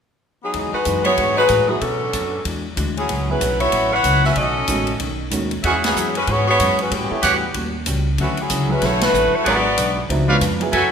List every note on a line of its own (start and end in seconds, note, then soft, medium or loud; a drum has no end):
0.43 0.72 F#3 medium
0.43 0.72 B3 medium
0.43 0.72 D#4 medium
0.43 0.72 G#4 medium
0.54 0.72 E2 medium
0.54 0.75 E3 soft
0.54 0.75 G#3 soft
0.54 0.76 D#4 medium
0.54 0.76 F#4 soft
0.54 kick soft
0.54 ride soft
0.73 1.03 G#3 medium
0.73 1.03 D#4 medium
0.73 1.03 F#4 medium
0.73 1.03 B4 medium
0.73 muted upright bass stroke soft
0.85 1.17 F#2 medium
0.85 1.07 E3 medium
0.85 1.07 G#3 medium
0.85 1.07 D#4 medium
0.85 1.08 F#4 medium
0.85 kick soft
0.85 hi-hat pedal medium
0.85 ride medium
1.04 1.16 F#3 soft
1.04 1.34 B3 medium
1.04 1.17 B3 soft
1.04 1.17 E4 soft
1.04 1.35 F#4 medium
1.04 1.35 G#4 medium
1.04 1.17 G#4 soft
1.04 1.34 C#5 medium
1.04 ride soft
1.16 1.49 G#2 medium
1.16 1.38 E3 soft
1.16 1.38 G#3 soft
1.16 1.39 D#4 soft
1.16 1.39 F#4 soft
1.16 kick soft
1.16 ride soft
1.36 1.67 G#3 medium
1.36 1.67 D#4 medium
1.36 1.67 F#4 medium
1.36 1.67 B4 medium
1.49 1.80 A2 medium
1.49 1.70 E3 soft
1.49 1.71 G#3 soft
1.49 1.71 D#4 soft
1.49 1.71 F#4 medium
1.49 kick soft
1.49 hi-hat pedal soft
1.49 ride medium
1.67 1.80 F#3 soft
1.67 1.79 F#3 medium
1.67 1.81 B3 medium
1.67 1.80 B3 soft
1.67 1.81 D#4 medium
1.67 1.80 E4 soft
1.67 1.81 F#4 medium
1.67 1.81 G#4 medium
1.80 2.12 B2 medium
1.80 2.45 F#3 medium
1.80 2.02 B3 soft
1.80 2.45 C#4 medium
1.80 2.44 D4 medium
1.80 2.03 D4 soft
1.80 2.45 A4 medium
1.80 2.03 A4 soft
1.80 2.03 C#5 soft
1.80 kick soft
1.80 ride soft
2.13 2.44 F#2 medium
2.13 2.34 B3 medium
2.13 2.35 D4 medium
2.13 2.35 A4 medium
2.13 2.35 C#5 medium
2.13 kick soft
2.13 hi-hat pedal medium
2.13 ride medium
2.45 2.76 E2 medium
2.45 2.66 E3 soft
2.45 2.66 G#3 soft
2.45 2.67 D4 soft
2.45 2.67 F#4 soft
2.45 kick soft
2.45 ride medium
2.76 3.08 D2 medium
2.76 2.97 E3 medium
2.76 2.98 G#3 medium
2.76 2.98 D4 medium
2.76 2.98 F#4 medium
2.76 kick soft
2.76 hi-hat pedal soft
2.76 ride medium
2.97 3.27 F#3 medium
2.97 3.27 C#4 medium
2.97 3.27 E4 medium
2.97 3.27 G#4 medium
2.97 ride soft
3.08 3.40 C#2 medium
3.08 3.29 A2 soft
3.08 3.30 F#3 soft
3.08 3.30 B3 soft
3.08 3.30 C#4 medium
3.08 kick soft
3.08 ride medium
3.29 3.40 F#3 soft
3.29 3.61 F#3 medium
3.29 3.40 B3 soft
3.29 3.61 C#4 medium
3.29 3.40 E4 soft
3.29 3.59 E4 medium
3.29 3.41 G#4 medium
3.29 3.61 B4 medium
3.41 3.72 B1 medium
3.41 3.62 A2 medium
3.41 3.62 F#3 medium
3.41 3.62 B3 medium
3.41 3.63 C#4 medium
3.41 kick soft
3.41 hi-hat pedal medium
3.41 ride medium
3.60 3.90 B3 medium
3.60 3.90 E4 medium
3.60 3.90 F#4 medium
3.60 3.90 C#5 medium
3.60 ride soft
3.72 4.03 A1 medium
3.72 3.93 A2 soft
3.72 3.94 F#3 soft
3.72 3.94 B3 soft
3.72 3.95 C#4 soft
3.72 kick soft
3.72 ride medium
3.93 4.24 E4 medium
3.93 4.23 B4 medium
3.93 4.25 C#5 medium
3.93 4.25 F#5 medium
4.04 4.35 C#2 medium
4.04 4.26 A2 soft
4.04 4.26 F#3 medium
4.04 4.26 B3 soft
4.04 4.26 C#4 medium
4.04 kick soft
4.04 hi-hat pedal soft
4.04 ride medium
4.24 4.35 C#4 medium
4.24 4.35 F#4 medium
4.24 4.35 B4 medium
4.24 4.35 E5 medium
4.24 snare soft
4.36 4.67 B1 medium
4.36 4.57 B2 soft
4.36 4.57 D#3 soft
4.36 4.58 A3 soft
4.36 5.00 C#4 medium
4.36 4.58 C#4 soft
4.36 5.00 F#4 medium
4.36 5.00 A4 medium
4.36 5.00 D#5 medium
4.36 kick soft
4.36 ride soft
4.68 4.99 A1 medium
4.68 4.89 B2 soft
4.68 4.86 D#3 medium
4.68 4.90 D#3 medium
4.68 4.86 G#3 soft
4.68 4.90 A3 medium
4.68 4.86 C#4 soft
4.68 4.90 C#4 medium
4.68 4.86 F#4 soft
4.68 kick soft
4.68 hi-hat pedal medium
4.68 ride medium
4.87 ride soft
5.00 5.31 B1 medium
5.00 5.21 B2 soft
5.00 5.21 D#3 medium
5.00 5.22 A3 soft
5.00 5.22 C#4 soft
5.00 kick soft
5.00 ride medium
5.30 5.62 D#2 medium
5.30 5.53 B2 medium
5.30 5.49 D#3 soft
5.30 5.53 D#3 medium
5.30 5.49 G#3 soft
5.30 5.53 A3 medium
5.30 5.50 C#4 soft
5.30 5.53 C#4 medium
5.30 5.50 F#4 medium
5.30 kick soft
5.30 hi-hat pedal soft
5.30 ride medium
5.51 ride soft
5.63 5.94 E2 medium
5.63 5.73 C#3 medium
5.63 5.85 E3 soft
5.63 5.85 G#3 soft
5.63 5.74 G#3 medium
5.63 5.74 B3 medium
5.63 5.86 C#4 soft
5.63 5.74 F#4 medium
5.63 6.11 G#4 medium
5.63 6.11 C#5 medium
5.63 6.11 E5 medium
5.63 6.11 F#5 medium
5.63 kick soft
5.63 ride medium
5.67 5.86 F#4 soft
5.84 6.15 F#3 medium
5.84 6.14 B3 medium
5.84 6.14 C#4 medium
5.84 6.14 G#4 medium
5.84 snare medium
5.84 ride medium
5.95 6.26 F#2 medium
5.95 6.17 E3 medium
5.95 6.17 G#3 medium
5.95 6.17 C#4 medium
5.95 6.18 F#4 medium
5.95 hi-hat pedal medium
6.15 6.28 G#3 medium
6.15 6.27 C#4 medium
6.15 6.28 F#4 medium
6.15 6.27 B4 medium
6.15 ride soft
6.27 6.58 G#2 medium
6.27 6.48 E3 soft
6.27 6.49 G#3 soft
6.27 6.47 B3 medium
6.27 6.49 C#4 soft
6.27 6.46 F#4 medium
6.27 6.50 F#4 soft
6.27 6.47 G#4 medium
6.27 6.47 C#5 loud
6.27 kick soft
6.27 ride soft
6.48 6.77 B3 medium
6.48 6.77 F#4 medium
6.48 6.77 G#4 medium
6.48 6.77 C#5 medium
6.60 6.90 F#2 medium
6.60 6.80 E3 soft
6.60 6.80 G#3 soft
6.60 6.81 C#4 medium
6.60 6.81 F#4 soft
6.60 kick soft
6.60 hi-hat pedal soft
6.60 ride medium
6.79 6.92 G#3 medium
6.79 6.91 C#4 medium
6.79 6.91 F#4 medium
6.79 6.92 B4 medium
6.79 ride soft
6.89 7.11 A2 soft
6.89 7.09 A2 medium
6.89 7.55 E3 medium
6.89 7.11 G3 soft
6.89 7.55 B3 medium
6.89 7.12 C#4 soft
6.89 7.55 C#4 medium
6.89 7.12 F#4 medium
6.89 7.55 G4 medium
6.89 kick soft
6.89 ride medium
7.10 7.21 B3 medium
7.10 7.21 E4 medium
7.10 7.22 A4 medium
7.10 7.22 C#5 medium
7.10 muted upright bass stroke soft
7.21 7.54 E2 medium
7.21 7.43 A2 medium
7.21 7.44 G3 medium
7.21 7.44 C#4 medium
7.21 7.44 F#4 medium
7.21 7.35 G4 medium
7.21 7.35 B4 medium
7.21 7.35 C#5 medium
7.21 7.35 F#5 medium
7.21 kick soft
7.21 hi-hat pedal medium
7.21 ride medium
7.54 7.85 D#2 medium
7.54 7.75 A2 soft
7.54 7.75 G3 soft
7.54 7.76 C#4 soft
7.54 7.76 F#4 soft
7.54 kick soft
7.54 ride medium
7.86 8.17 C#2 medium
7.86 8.07 A2 medium
7.86 8.07 G3 medium
7.86 8.08 C#4 medium
7.86 8.08 F#4 medium
7.86 kick soft
7.86 hi-hat pedal medium
7.86 ride medium
8.18 8.49 D2 medium
8.18 8.39 D3 soft
8.18 8.37 E3 medium
8.18 8.39 F#3 soft
8.18 8.37 A3 medium
8.18 8.39 C#4 soft
8.18 8.37 C#4 medium
8.18 8.40 E4 soft
8.18 8.37 F#4 medium
8.18 kick soft
8.18 ride soft
8.37 8.71 F#3 medium
8.37 8.68 C#4 medium
8.37 8.69 E4 medium
8.37 8.71 G#4 medium
8.37 ride soft
8.50 8.81 C#2 medium
8.50 8.71 D3 medium
8.50 8.71 F#3 medium
8.50 8.71 C#4 medium
8.50 8.72 E4 medium
8.50 kick soft
8.50 hi-hat pedal medium
8.50 ride medium
8.69 9.11 F#3 medium
8.69 8.82 G#3 medium
8.69 9.11 B3 soft
8.69 8.82 C#4 medium
8.69 8.82 E4 medium
8.69 9.12 E4 soft
8.69 9.12 G#4 medium
8.69 8.82 B4 medium
8.82 9.12 B1 medium
8.82 9.02 D3 soft
8.82 9.03 F#3 soft
8.82 9.01 A3 medium
8.82 9.03 C#4 soft
8.82 9.01 E4 medium
8.82 9.04 E4 soft
8.82 9.01 F#4 medium
8.82 9.02 C#5 loud
8.82 kick soft
8.82 snare soft
8.82 ride medium
9.01 9.33 A3 medium
9.01 9.33 E4 medium
9.01 9.33 F#4 medium
9.01 9.33 B4 loud
9.01 snare medium
9.01 ride medium
9.12 9.31 A1 medium
9.12 9.34 D3 medium
9.12 9.34 F#3 medium
9.12 9.35 C#4 medium
9.12 9.35 E4 medium
9.12 hi-hat pedal soft
9.33 9.46 A3 medium
9.33 9.46 E4 medium
9.33 9.46 F#4 medium
9.33 9.46 C#5 medium
9.33 muted upright bass stroke soft
9.44 9.76 G#1 medium
9.44 9.66 G#2 soft
9.44 9.66 F#3 medium
9.44 9.66 B3 soft
9.44 10.06 B3 medium
9.44 9.67 D4 medium
9.44 10.06 F#4 medium
9.44 9.58 G#4 medium
9.44 10.06 G#4 medium
9.44 9.58 B4 medium
9.44 9.58 D5 medium
9.44 10.06 D5 medium
9.44 9.58 F#5 medium
9.44 kick soft
9.44 ride medium
9.76 10.08 B1 medium
9.76 9.97 G#2 medium
9.76 9.98 F#3 medium
9.76 9.98 B3 medium
9.76 9.98 D4 medium
9.76 kick soft
9.76 hi-hat pedal medium
9.76 ride medium
10.08 10.40 C#2 medium
10.08 10.29 C#3 soft
10.08 10.30 F3 soft
10.08 10.27 A3 medium
10.08 10.30 B3 soft
10.08 10.27 C4 soft
10.08 10.31 D4 soft
10.08 10.28 D#4 soft
10.08 10.28 F#4 medium
10.08 kick soft
10.08 ride medium
10.28 10.56 G#3 medium
10.28 10.57 B3 soft
10.28 10.57 D4 medium
10.28 10.57 F4 medium
10.28 10.37 B4 medium
10.28 10.36 C#5 medium
10.28 10.37 D5 medium
10.28 10.37 F5 medium
10.40 10.72 F2 medium
10.40 10.61 C#3 medium
10.40 10.62 F3 medium
10.40 10.62 B3 medium
10.40 10.62 D4 medium
10.40 kick soft
10.40 hi-hat pedal soft
10.40 ride medium
10.60 10.71 F#3 medium
10.60 10.72 B3 soft
10.60 10.72 E4 soft
10.60 10.72 G#4 medium
10.60 ride soft
10.72 10.91 F#2 medium
10.72 10.92 E3 medium
10.72 10.92 F#3 soft
10.72 10.92 A3 medium
10.72 10.92 B3 soft
10.72 10.92 C#4 medium
10.72 10.92 E4 medium
10.72 10.92 F#4 medium
10.72 10.92 A4 medium
10.72 10.92 A4 soft
10.72 10.92 B4 medium
10.72 10.92 E5 medium
10.72 10.92 G#5 medium
10.72 kick soft
10.72 ride medium